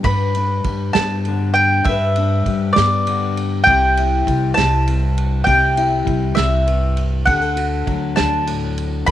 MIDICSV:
0, 0, Header, 1, 5, 480
1, 0, Start_track
1, 0, Key_signature, 1, "major"
1, 0, Tempo, 602410
1, 34, Time_signature, 6, 3, 24, 8
1, 7259, End_track
2, 0, Start_track
2, 0, Title_t, "Mandolin"
2, 0, Program_c, 0, 25
2, 36, Note_on_c, 0, 83, 90
2, 740, Note_off_c, 0, 83, 0
2, 743, Note_on_c, 0, 81, 84
2, 1221, Note_off_c, 0, 81, 0
2, 1224, Note_on_c, 0, 79, 87
2, 1470, Note_on_c, 0, 76, 85
2, 1479, Note_off_c, 0, 79, 0
2, 2163, Note_off_c, 0, 76, 0
2, 2173, Note_on_c, 0, 74, 82
2, 2695, Note_off_c, 0, 74, 0
2, 2897, Note_on_c, 0, 79, 94
2, 3616, Note_off_c, 0, 79, 0
2, 3619, Note_on_c, 0, 81, 96
2, 4317, Note_off_c, 0, 81, 0
2, 4336, Note_on_c, 0, 79, 88
2, 5058, Note_on_c, 0, 76, 81
2, 5088, Note_off_c, 0, 79, 0
2, 5575, Note_off_c, 0, 76, 0
2, 5781, Note_on_c, 0, 78, 80
2, 6497, Note_off_c, 0, 78, 0
2, 6500, Note_on_c, 0, 81, 76
2, 6955, Note_off_c, 0, 81, 0
2, 7223, Note_on_c, 0, 83, 99
2, 7259, Note_off_c, 0, 83, 0
2, 7259, End_track
3, 0, Start_track
3, 0, Title_t, "Nylon-string guitar"
3, 0, Program_c, 1, 24
3, 0, Note_on_c, 1, 62, 48
3, 24, Note_on_c, 1, 43, 74
3, 36, Note_on_c, 1, 71, 61
3, 281, Note_off_c, 1, 62, 0
3, 291, Note_on_c, 1, 62, 49
3, 531, Note_on_c, 1, 55, 56
3, 778, Note_on_c, 1, 59, 60
3, 1018, Note_on_c, 1, 50, 61
3, 1451, Note_off_c, 1, 71, 0
3, 1460, Note_off_c, 1, 50, 0
3, 1461, Note_off_c, 1, 59, 0
3, 1474, Note_off_c, 1, 43, 0
3, 1505, Note_on_c, 1, 43, 68
3, 1505, Note_on_c, 1, 71, 62
3, 1724, Note_off_c, 1, 62, 0
3, 1734, Note_on_c, 1, 62, 54
3, 1971, Note_off_c, 1, 55, 0
3, 1974, Note_on_c, 1, 55, 63
3, 2223, Note_on_c, 1, 59, 59
3, 2448, Note_on_c, 1, 50, 56
3, 2895, Note_off_c, 1, 50, 0
3, 2903, Note_off_c, 1, 59, 0
3, 2903, Note_off_c, 1, 71, 0
3, 2927, Note_off_c, 1, 62, 0
3, 2933, Note_off_c, 1, 43, 0
3, 2937, Note_on_c, 1, 48, 69
3, 2940, Note_on_c, 1, 67, 68
3, 3176, Note_on_c, 1, 64, 54
3, 3404, Note_off_c, 1, 55, 0
3, 3407, Note_on_c, 1, 55, 62
3, 3652, Note_on_c, 1, 60, 58
3, 3881, Note_on_c, 1, 43, 59
3, 3888, Note_off_c, 1, 48, 0
3, 4334, Note_off_c, 1, 55, 0
3, 4336, Note_off_c, 1, 60, 0
3, 4338, Note_off_c, 1, 64, 0
3, 4351, Note_off_c, 1, 67, 0
3, 4356, Note_on_c, 1, 48, 74
3, 4360, Note_off_c, 1, 43, 0
3, 4361, Note_on_c, 1, 67, 61
3, 4601, Note_on_c, 1, 64, 50
3, 4819, Note_on_c, 1, 55, 63
3, 5072, Note_on_c, 1, 60, 60
3, 5306, Note_on_c, 1, 43, 57
3, 5316, Note_off_c, 1, 48, 0
3, 5758, Note_off_c, 1, 55, 0
3, 5765, Note_off_c, 1, 60, 0
3, 5769, Note_off_c, 1, 64, 0
3, 5782, Note_off_c, 1, 67, 0
3, 5791, Note_off_c, 1, 43, 0
3, 5792, Note_on_c, 1, 67, 70
3, 5798, Note_on_c, 1, 50, 71
3, 5910, Note_off_c, 1, 67, 0
3, 5910, Note_on_c, 1, 69, 50
3, 6026, Note_on_c, 1, 66, 50
3, 6269, Note_on_c, 1, 54, 65
3, 6515, Note_on_c, 1, 62, 62
3, 6750, Note_on_c, 1, 45, 60
3, 7203, Note_off_c, 1, 45, 0
3, 7228, Note_off_c, 1, 69, 0
3, 7230, Note_off_c, 1, 50, 0
3, 7233, Note_on_c, 1, 50, 75
3, 7259, Note_off_c, 1, 50, 0
3, 7259, Note_off_c, 1, 54, 0
3, 7259, Note_off_c, 1, 62, 0
3, 7259, Note_off_c, 1, 66, 0
3, 7259, End_track
4, 0, Start_track
4, 0, Title_t, "Upright bass"
4, 0, Program_c, 2, 32
4, 36, Note_on_c, 2, 43, 81
4, 493, Note_off_c, 2, 43, 0
4, 516, Note_on_c, 2, 43, 82
4, 745, Note_off_c, 2, 43, 0
4, 755, Note_on_c, 2, 43, 80
4, 1446, Note_off_c, 2, 43, 0
4, 1476, Note_on_c, 2, 43, 90
4, 1934, Note_off_c, 2, 43, 0
4, 1964, Note_on_c, 2, 43, 77
4, 2190, Note_off_c, 2, 43, 0
4, 2207, Note_on_c, 2, 43, 84
4, 2892, Note_off_c, 2, 43, 0
4, 2924, Note_on_c, 2, 36, 80
4, 3378, Note_off_c, 2, 36, 0
4, 3402, Note_on_c, 2, 36, 79
4, 3629, Note_off_c, 2, 36, 0
4, 3647, Note_on_c, 2, 36, 89
4, 4331, Note_off_c, 2, 36, 0
4, 4358, Note_on_c, 2, 36, 87
4, 4814, Note_off_c, 2, 36, 0
4, 4838, Note_on_c, 2, 36, 77
4, 5066, Note_off_c, 2, 36, 0
4, 5078, Note_on_c, 2, 36, 88
4, 5765, Note_off_c, 2, 36, 0
4, 5798, Note_on_c, 2, 38, 85
4, 6253, Note_off_c, 2, 38, 0
4, 6275, Note_on_c, 2, 38, 84
4, 6503, Note_off_c, 2, 38, 0
4, 6523, Note_on_c, 2, 38, 80
4, 7206, Note_off_c, 2, 38, 0
4, 7234, Note_on_c, 2, 38, 84
4, 7259, Note_off_c, 2, 38, 0
4, 7259, End_track
5, 0, Start_track
5, 0, Title_t, "Drums"
5, 32, Note_on_c, 9, 51, 62
5, 34, Note_on_c, 9, 36, 85
5, 112, Note_off_c, 9, 51, 0
5, 113, Note_off_c, 9, 36, 0
5, 276, Note_on_c, 9, 51, 47
5, 356, Note_off_c, 9, 51, 0
5, 513, Note_on_c, 9, 51, 47
5, 514, Note_on_c, 9, 36, 56
5, 592, Note_off_c, 9, 51, 0
5, 594, Note_off_c, 9, 36, 0
5, 755, Note_on_c, 9, 38, 84
5, 755, Note_on_c, 9, 51, 58
5, 835, Note_off_c, 9, 38, 0
5, 835, Note_off_c, 9, 51, 0
5, 995, Note_on_c, 9, 51, 44
5, 1075, Note_off_c, 9, 51, 0
5, 1238, Note_on_c, 9, 51, 49
5, 1318, Note_off_c, 9, 51, 0
5, 1476, Note_on_c, 9, 51, 61
5, 1478, Note_on_c, 9, 36, 95
5, 1555, Note_off_c, 9, 51, 0
5, 1557, Note_off_c, 9, 36, 0
5, 1719, Note_on_c, 9, 51, 50
5, 1798, Note_off_c, 9, 51, 0
5, 1961, Note_on_c, 9, 36, 58
5, 1961, Note_on_c, 9, 51, 46
5, 2040, Note_off_c, 9, 36, 0
5, 2040, Note_off_c, 9, 51, 0
5, 2201, Note_on_c, 9, 38, 86
5, 2201, Note_on_c, 9, 51, 58
5, 2281, Note_off_c, 9, 38, 0
5, 2281, Note_off_c, 9, 51, 0
5, 2445, Note_on_c, 9, 51, 53
5, 2524, Note_off_c, 9, 51, 0
5, 2687, Note_on_c, 9, 51, 51
5, 2767, Note_off_c, 9, 51, 0
5, 2924, Note_on_c, 9, 36, 96
5, 2927, Note_on_c, 9, 51, 69
5, 3003, Note_off_c, 9, 36, 0
5, 3006, Note_off_c, 9, 51, 0
5, 3166, Note_on_c, 9, 51, 53
5, 3246, Note_off_c, 9, 51, 0
5, 3403, Note_on_c, 9, 36, 55
5, 3409, Note_on_c, 9, 51, 52
5, 3483, Note_off_c, 9, 36, 0
5, 3488, Note_off_c, 9, 51, 0
5, 3644, Note_on_c, 9, 38, 81
5, 3644, Note_on_c, 9, 51, 63
5, 3724, Note_off_c, 9, 38, 0
5, 3724, Note_off_c, 9, 51, 0
5, 3885, Note_on_c, 9, 51, 50
5, 3965, Note_off_c, 9, 51, 0
5, 4125, Note_on_c, 9, 51, 50
5, 4204, Note_off_c, 9, 51, 0
5, 4357, Note_on_c, 9, 51, 63
5, 4358, Note_on_c, 9, 36, 91
5, 4436, Note_off_c, 9, 51, 0
5, 4437, Note_off_c, 9, 36, 0
5, 4600, Note_on_c, 9, 51, 51
5, 4680, Note_off_c, 9, 51, 0
5, 4837, Note_on_c, 9, 36, 61
5, 4839, Note_on_c, 9, 51, 45
5, 4916, Note_off_c, 9, 36, 0
5, 4918, Note_off_c, 9, 51, 0
5, 5073, Note_on_c, 9, 38, 83
5, 5073, Note_on_c, 9, 51, 57
5, 5152, Note_off_c, 9, 38, 0
5, 5152, Note_off_c, 9, 51, 0
5, 5319, Note_on_c, 9, 51, 49
5, 5399, Note_off_c, 9, 51, 0
5, 5553, Note_on_c, 9, 51, 51
5, 5632, Note_off_c, 9, 51, 0
5, 5794, Note_on_c, 9, 36, 90
5, 5795, Note_on_c, 9, 51, 61
5, 5873, Note_off_c, 9, 36, 0
5, 5875, Note_off_c, 9, 51, 0
5, 6031, Note_on_c, 9, 51, 54
5, 6111, Note_off_c, 9, 51, 0
5, 6273, Note_on_c, 9, 36, 59
5, 6274, Note_on_c, 9, 51, 44
5, 6352, Note_off_c, 9, 36, 0
5, 6353, Note_off_c, 9, 51, 0
5, 6509, Note_on_c, 9, 38, 82
5, 6509, Note_on_c, 9, 51, 61
5, 6589, Note_off_c, 9, 38, 0
5, 6589, Note_off_c, 9, 51, 0
5, 6752, Note_on_c, 9, 51, 57
5, 6831, Note_off_c, 9, 51, 0
5, 6993, Note_on_c, 9, 51, 54
5, 7073, Note_off_c, 9, 51, 0
5, 7229, Note_on_c, 9, 51, 71
5, 7232, Note_on_c, 9, 36, 91
5, 7259, Note_off_c, 9, 36, 0
5, 7259, Note_off_c, 9, 51, 0
5, 7259, End_track
0, 0, End_of_file